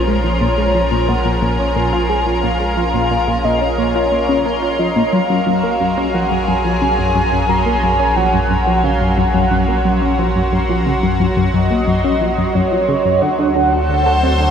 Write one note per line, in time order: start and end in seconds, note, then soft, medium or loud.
0.00 5.10 A#1 medium
0.00 5.13 F3 medium
0.00 5.13 C#4 medium
0.00 5.13 G#4 medium
0.00 13.22 A#4 medium
0.00 0.43 C5 medium
0.00 14.51 C6 medium
0.07 0.18 G#3 medium
0.24 0.35 F3 medium
0.41 0.47 A#2 medium
0.41 1.10 C#5 medium
0.58 0.74 G#3 medium
0.75 0.81 F3 loud
0.92 1.07 A#2 medium
1.08 1.15 A#2 loud
1.08 1.43 F#5 loud
1.25 1.36 A#2 loud
1.42 1.58 A#2 loud
1.42 2.42 G#5 loud
1.59 1.70 C#4 medium
1.76 1.92 A#2 medium
1.93 2.03 F4 loud
2.10 2.20 G#3 medium
2.26 2.37 F3 medium
2.43 2.50 A#2 medium
2.43 3.46 F5 loud
2.60 2.76 G#3 medium
2.77 2.83 F3 loud
2.94 3.10 A#2 medium
3.11 3.17 A#2 loud
3.28 3.38 A#2 loud
3.44 3.60 A#2 loud
3.44 3.79 D#5 medium
3.61 3.72 C#4 medium
3.78 3.94 A#2 medium
3.78 4.80 C#5 loud
3.95 4.06 F4 loud
4.12 4.28 A#3 medium
4.29 4.44 C#3 medium
4.46 4.52 A#3 loud
4.62 4.69 F4 loud
4.79 4.90 F3 medium
4.79 5.14 D#5 medium
4.96 5.02 A#2 loud
5.13 13.19 A#1 medium
5.13 5.19 F#2 loud
5.13 14.51 F#3 medium
5.13 6.15 F5 loud
5.30 5.40 F#2 loud
5.47 5.62 F#2 medium
5.63 5.74 A#3 medium
5.63 9.70 G#4 medium
5.80 5.96 F#2 medium
5.80 13.22 C#4 medium
5.97 6.08 C#4 loud
6.14 6.25 F3 medium
6.14 6.47 F#5 loud
6.31 6.37 F#2 medium
6.47 6.54 F#2 medium
6.47 7.50 G#5 loud
6.65 6.81 F3 medium
6.82 6.88 C#3 loud
6.99 7.14 F#2 medium
7.15 7.22 F#2 loud
7.32 7.43 F#2 loud
7.49 7.65 F#2 loud
7.49 7.84 A#5 loud
7.66 7.76 A#3 medium
7.82 7.98 F#2 medium
7.82 8.18 G#5 loud
8.00 8.10 C#4 loud
8.16 8.27 F3 medium
8.16 8.77 F#5 loud
8.33 8.40 F#2 medium
8.50 8.56 F#2 medium
8.67 8.83 F3 medium
8.77 8.85 F#5 medium
8.84 8.90 C#3 medium
8.84 9.19 F5 loud
9.01 9.16 F#2 medium
9.18 9.24 F#2 loud
9.18 10.19 F#5 loud
9.34 9.45 F#2 loud
9.50 9.67 F#2 loud
9.50 14.30 F#4 medium
9.68 9.79 A#3 medium
9.85 10.01 F#2 medium
10.02 10.12 C#4 medium
10.19 10.29 F3 medium
10.36 10.42 F#2 medium
10.53 10.59 F#2 medium
10.69 10.85 F3 medium
10.86 10.92 C#3 loud
11.03 11.19 F#2 medium
11.20 11.26 F#2 loud
11.37 11.47 F#2 loud
11.54 11.69 F#2 loud
11.54 12.56 D#5 loud
11.71 11.81 A#3 medium
11.87 12.03 F#2 medium
12.04 12.15 C#4 loud
12.21 12.31 F3 medium
12.38 12.44 F#2 medium
12.55 12.61 F#2 medium
12.55 13.23 C#5 loud
12.72 12.87 F3 medium
12.89 12.95 C#3 loud
13.05 13.21 F#2 medium
13.22 14.51 D2 medium
13.22 13.28 D3 loud
13.22 14.51 F#5 loud
13.39 13.49 D3 loud
13.51 14.51 A4 medium
13.56 13.71 D3 loud
13.60 14.51 C5 medium
13.73 13.83 F#4 medium
13.82 14.51 D4 medium
13.89 14.05 D3 medium
14.06 14.17 A4 loud
14.23 14.34 C4 medium
14.40 14.46 D3 medium